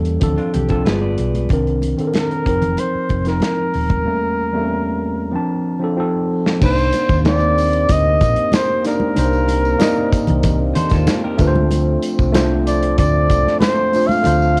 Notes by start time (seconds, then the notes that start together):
Already playing: E2 G3 A#3 C#4 A4
0.05 closed hi-hat
0.20 D2 F3 C4 D4 A4, kick, closed hi-hat, muted conga, low conga
0.38 D4 F4, muted fingered electric bass stroke, closed hi-hat
0.54 C2 G4, closed hi-hat, muted conga, low conga
0.68 F3 C4 D4 F4 A4, kick, closed hi-hat
0.84 G1 G3 B3 F4 G#4 B4, snare, closed hi-hat, high conga
1.01 B4 D5
1.18 B1, closed hi-hat
1.35 closed hi-hat, high conga
1.49 C2 D#3 C4 D4, kick, closed hi-hat, muted conga
1.53 A#4
1.67 closed hi-hat
1.82 closed hi-hat, muted conga
1.97 D#3 C4 D4 A4, muted fingered electric bass stroke, closed hi-hat
2.07 A#4
2.14 A#4, snare, closed hi-hat, high conga
2.31 closed hi-hat
2.45 F1 F3 C4 D#4 A#4, kick, closed hi-hat
2.62 closed hi-hat, low conga
2.77 C5, closed hi-hat, muted conga
2.95 muted fingered electric bass stroke
3.09 F1, kick, closed hi-hat, muted conga
3.24 F3 C4 D#4 A#4, snare, closed hi-hat
3.29 A#4
3.40 snare, closed hi-hat, high conga
3.74 D#1, open hi-hat
3.90 kick, closed hi-hat, high conga
4.04 E2 G3 A3 A#3 C#4
4.52 E2 G3 A3 A#3 C4
4.62 C#4
5.32 F3 C4 D4
5.36 A5
5.80 F3 C4 D4
5.84 A4
5.96 F3 C4 D#4 A4
6.46 snare
6.59 C2 C3 A#3 C4 D4 D#4 C5, kick, crash, tambourine, muted conga
6.65 C5
6.78 tambourine
6.93 closed hi-hat, tambourine, muted conga
7.09 D#2, kick, tambourine
7.24 A#3 C4 D#4 C5, snare, closed hi-hat, tambourine, high conga
7.28 D5
7.58 open hi-hat, tambourine
7.73 closed hi-hat
7.89 D2 D#5, kick, closed hi-hat, tambourine, muted conga
8.21 A#1, kick, closed hi-hat, tambourine, muted conga
8.36 closed hi-hat
8.52 C5, snare, closed hi-hat, tambourine, high conga
8.83 A#3 D4 D#4 D5, snare, closed hi-hat, tambourine
8.88 A#4
9.00 high conga
9.15 C2 A#3 D4 D#4 C5, closed hi-hat, tambourine, muted conga
9.33 tambourine
9.48 closed hi-hat, tambourine, muted conga
9.65 tambourine
9.78 A#3 D#4 D5 D#5, snare, closed hi-hat, tambourine, high conga
10.13 muted fingered electric bass stroke, kick, closed hi-hat, tambourine
10.27 C2, closed hi-hat, low conga
10.43 kick, closed hi-hat, tambourine, muted conga, low conga
10.75 A4 C5, muted fingered electric bass stroke, closed hi-hat, tambourine, muted conga, low conga
10.90 D#2 F4 A4, kick, snare, closed hi-hat, tambourine
11.07 snare, closed hi-hat, tambourine, high conga
11.24 G4 A#4
11.37 D2 F3 A3 D4 F4 B4, kick, closed hi-hat, tambourine
11.47 C5
11.56 high conga
11.71 closed hi-hat, tambourine, muted conga
12.03 closed hi-hat, tambourine
12.19 C2, kick, tambourine
12.32 A3 D4 F4 C5, snare, closed hi-hat, tambourine, high conga
12.67 D5, closed hi-hat, tambourine
12.83 closed hi-hat
12.98 D2 D5, kick, closed hi-hat, tambourine, muted conga
13.30 C2, kick, closed hi-hat, tambourine, muted conga
13.47 snare
13.60 C5, snare, closed hi-hat, tambourine, high conga
13.93 A3 D4 F4 C5, open hi-hat, tambourine
14.08 F5, tambourine, high conga
14.23 D2 A3 D4 F4 C5, closed hi-hat, tambourine, muted conga
14.42 tambourine